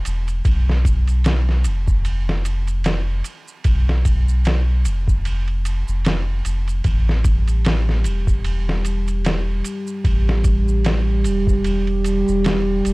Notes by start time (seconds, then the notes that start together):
0.05 E1, ride, maracas
0.28 ride, maracas
0.45 B1, kick, ride, maracas
0.69 snare
0.85 kick, ride, maracas
1.07 ride, maracas
1.24 snare, ride, maracas
1.49 snare
1.64 F1, ride, maracas
1.88 kick, maracas
2.05 ride, maracas
2.29 snare
2.45 ride, maracas
2.67 ride, maracas
2.84 snare, ride, maracas
3.24 ride, maracas
3.48 maracas
3.64 B1, kick, ride, maracas
3.89 snare
4.05 kick, ride, maracas
4.28 maracas
4.45 snare, ride, maracas
4.85 F1, ride, maracas
5.08 kick, maracas
5.25 ride, maracas
5.48 ride
5.65 ride, maracas
5.88 F1, maracas
6.05 snare, ride, maracas
6.45 F1, ride, maracas
6.68 ride, maracas
6.84 A1 G3 G4, kick, ride, maracas
7.09 snare
7.24 kick, ride, maracas
7.48 ride, maracas
7.65 snare, ride, maracas
7.89 snare
8.04 E1, ride, maracas
8.27 kick, maracas
8.44 ride, maracas
8.69 snare
8.85 ride, maracas
9.08 ride, maracas
9.25 snare, ride, maracas
9.64 ride, maracas
9.87 maracas
10.04 A1, kick, ride, maracas
10.29 snare
10.44 kick, ride, maracas
10.68 maracas
10.85 snare, ride, maracas
11.24 E1, ride, maracas
11.47 kick, maracas
11.64 ride, maracas
11.87 ride
12.04 ride, maracas
12.28 E1, maracas
12.44 snare, ride, maracas
12.85 E1, ride, maracas